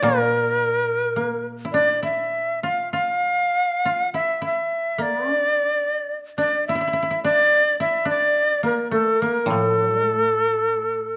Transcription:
Already playing: koto D4 E4
0.03 koto A#2 A#3, shakuhachi A#4
1.16 koto A#3
1.65 koto E4
1.73 koto D4, shakuhachi D5
2.03 koto E4, shakuhachi E5
2.63 koto F4, shakuhachi F5
2.93 koto F4, shakuhachi F5
3.85 koto F4
4.14 koto E4, shakuhachi E5
4.42 koto E4, shakuhachi E5
4.98 koto A#3, shakuhachi D5
5.34 koto D4
6.38 koto D4, shakuhachi D5
6.68 koto E4, shakuhachi E5
6.75 koto E4
6.81 koto E4
6.87 koto E4
6.93 koto E4
7.03 koto E4
7.11 koto E4
7.24 koto D4, shakuhachi D5
7.80 koto E4, shakuhachi E5
8.05 koto D4
8.10 shakuhachi D5
8.63 koto A#3, shakuhachi A#4
8.91 koto A3, shakuhachi A4
9.20 koto A#3, shakuhachi A#4
9.46 koto A2, shakuhachi A4
9.50 koto F3
9.80 koto F#3
9.92 koto G3
10.14 koto A3

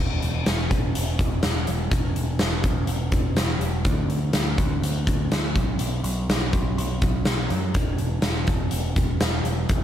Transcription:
Already playing: picked electric bass E1
0.22 picked electric bass E1, closed hi-hat
0.46 picked electric bass E1, snare, closed hi-hat
0.71 picked electric bass E1, kick, closed hi-hat
0.95 picked electric bass E1, closed hi-hat
1.19 kick, closed hi-hat
1.43 picked electric bass E1, snare, closed hi-hat
1.67 picked electric bass E1, closed hi-hat
1.91 picked electric bass E1, kick, closed hi-hat
2.16 picked electric bass E1, closed hi-hat
2.39 picked electric bass E1, snare, closed hi-hat
2.64 picked electric bass E1, kick, closed hi-hat
2.87 picked electric bass E1, closed hi-hat
3.12 kick, closed hi-hat
3.37 picked electric bass E1, snare, closed hi-hat
3.59 picked electric bass E1, closed hi-hat
3.85 picked electric bass D2, kick, closed hi-hat
4.08 picked electric bass D2, closed hi-hat
4.33 picked electric bass D2, snare, closed hi-hat
4.58 picked electric bass D2, kick, closed hi-hat
4.81 picked electric bass D2, closed hi-hat
5.07 kick, closed hi-hat
5.32 picked electric bass D2, snare, closed hi-hat
5.55 picked electric bass B1, kick, closed hi-hat
5.79 picked electric bass B1, closed hi-hat
6.03 picked electric bass B1, closed hi-hat
6.29 picked electric bass B1, snare, closed hi-hat
6.53 picked electric bass B1, kick, closed hi-hat
6.77 picked electric bass B1, closed hi-hat
7.02 kick, closed hi-hat
7.25 picked electric bass B1, snare, closed hi-hat
7.50 picked electric bass F#2, closed hi-hat
7.74 picked electric bass E1, kick, closed hi-hat
7.98 picked electric bass E1, closed hi-hat
8.21 picked electric bass E1, snare, closed hi-hat
8.47 picked electric bass E1, kick, closed hi-hat
8.71 picked electric bass E1, closed hi-hat
8.96 kick, closed hi-hat
9.20 picked electric bass E1, snare, closed hi-hat
9.44 picked electric bass E1, closed hi-hat
9.69 picked electric bass E1, kick, closed hi-hat

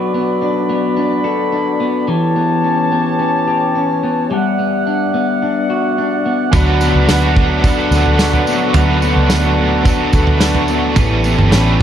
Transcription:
Already playing: clean electric guitar F#3 B3 D4 A4, brass ensemble F#4 B4 D5 B5
0.14 clean electric guitar B3
0.42 clean electric guitar D4
0.69 clean electric guitar B3
0.97 clean electric guitar D4
1.24 clean electric guitar A4
1.52 clean electric guitar D4
1.80 clean electric guitar B3
2.07 clean electric guitar E3, brass ensemble G4 B4 C#5 A5
2.36 clean electric guitar B3
2.64 clean electric guitar C#4
2.92 clean electric guitar B3
3.20 clean electric guitar C#4
3.47 clean electric guitar G4
3.75 clean electric guitar C#4
4.03 clean electric guitar B3
4.30 clean electric guitar G3, brass ensemble D5 E5 F#5
4.59 clean electric guitar B3
4.87 clean electric guitar D4
5.14 clean electric guitar B3
5.42 clean electric guitar D4
5.70 clean electric guitar F#4
5.98 clean electric guitar D4
6.26 clean electric guitar B3
6.53 fingered electric bass D2, overdriven electric guitar D3 F#3 A3 F#4 B4, clean electric guitar F#3, brass ensemble B4 A5, kick, floor tom, tambourine
6.81 clean electric guitar B3, tambourine
6.94 fingered electric bass C#2
7.07 fingered electric bass D2, overdriven electric guitar F#3 A3 F#4, clean electric guitar D4, snare, tambourine
7.12 overdriven electric guitar B4
7.37 clean electric guitar B3, kick
7.62 overdriven electric guitar D3 F#3 A3, clean electric guitar D4, kick, floor tom, tambourine
7.67 overdriven electric guitar F#4 B4
7.91 fingered electric bass D2, clean electric guitar A4, tambourine
8.06 floor tom
8.19 clean electric guitar D4, snare, tambourine
8.33 floor tom
8.47 clean electric guitar B3, tambourine
8.73 fingered electric bass D2, overdriven electric guitar D3 F#3 A3, clean electric guitar F#3, floor tom, tambourine
8.78 overdriven electric guitar F#4 B4
9.02 clean electric guitar B3, tambourine
9.16 fingered electric bass C#2
9.30 fingered electric bass D2, clean electric guitar D4, snare, tambourine
9.58 clean electric guitar B3
9.84 overdriven electric guitar D3 F#3 A3, clean electric guitar D4, kick, floor tom, tambourine
9.89 overdriven electric guitar F#4 B4
10.13 fingered electric bass D2, clean electric guitar A4, kick, tambourine
10.27 floor tom
10.40 clean electric guitar D4, snare, tambourine
10.55 floor tom
10.68 clean electric guitar B3, tambourine
10.96 fingered electric bass A1, overdriven electric guitar A2 E3 G3 A3 C#4 B4, clean electric guitar E3, brass ensemble G4 C#5, kick, floor tom, tambourine
11.24 clean electric guitar B3, tambourine
11.38 fingered electric bass G1, floor tom
11.51 fingered electric bass A1, overdriven electric guitar G3 A3 C#4, clean electric guitar C#4, snare, tambourine
11.55 overdriven electric guitar B4

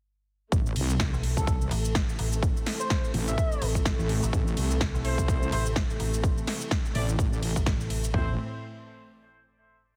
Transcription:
0.52 wobble bass A1, string section C3 E3 A3, kick, closed hi-hat, shaker
0.66 shaker
0.76 wobble bass C2, open hi-hat, ride
0.89 closed hi-hat, shaker
1.00 kick, snare, closed hi-hat, shaker
1.13 fm bass B1, shaker
1.23 open hi-hat, ride
1.37 wobble bass C2, digital synth lead A4, kick, closed hi-hat, shaker
1.47 digital synth lead A4, kick, closed hi-hat, shaker
1.61 shaker
1.71 fm bass A1, open hi-hat, ride
1.85 closed hi-hat, shaker
1.95 kick, snare, closed hi-hat, shaker
2.09 shaker
2.19 fm bass A1, open hi-hat, ride
2.32 closed hi-hat, shaker
2.43 kick, closed hi-hat, shaker
2.57 shaker
2.66 snare, open hi-hat, ride
2.80 digital synth lead C5, closed hi-hat, shaker
2.90 digital synth lead C5, kick, snare, closed hi-hat, shaker
3.04 shaker
3.14 wobble bass A1, open hi-hat, ride
3.28 digital synth lead E5, closed hi-hat, shaker
3.38 kick, closed hi-hat, shaker
3.52 shaker
3.62 fm bass A1, open hi-hat, ride
3.75 kick, closed hi-hat, shaker
3.85 kick, snare, closed hi-hat, shaker
3.99 wobble bass A1, shaker
4.09 open hi-hat, ride
4.23 fm bass A1, closed hi-hat, shaker
4.33 wobble bass A1, kick, closed hi-hat, shaker
4.47 shaker
4.57 wobble bass C2, open hi-hat, ride
4.71 closed hi-hat, shaker
4.81 kick, snare, closed hi-hat, shaker
4.94 fm bass B1, shaker
5.05 horn section A3 C4 E4 C5, open hi-hat, ride
5.18 wobble bass C2, kick, closed hi-hat, shaker
5.28 kick, closed hi-hat, shaker
5.43 shaker
5.52 fm bass A1, horn section A3 C4 E4 C5, open hi-hat, ride
5.66 closed hi-hat, shaker
5.76 kick, snare, closed hi-hat, shaker
5.90 shaker
6.00 fm bass A1, open hi-hat, ride
6.13 closed hi-hat, shaker
6.24 kick, closed hi-hat, shaker
6.38 shaker
6.47 snare, open hi-hat, ride
6.61 closed hi-hat, shaker
6.71 kick, snare, closed hi-hat, shaker
6.85 shaker
6.95 wobble bass A1, horn section A3 C4 E4 D5, open hi-hat, ride
7.09 closed hi-hat, shaker
7.19 wobble bass A1, kick, closed hi-hat, shaker
7.33 shaker
7.43 open hi-hat, ride
7.56 fm bass A1, kick, shaker
7.66 fm bass A1, kick, snare, closed hi-hat, shaker
7.81 shaker
7.90 open hi-hat, ride
8.04 closed hi-hat, shaker
8.14 wobble bass A1, string section A2 E3 C4, horn section A3 C4 E4 C5, kick, floor tom

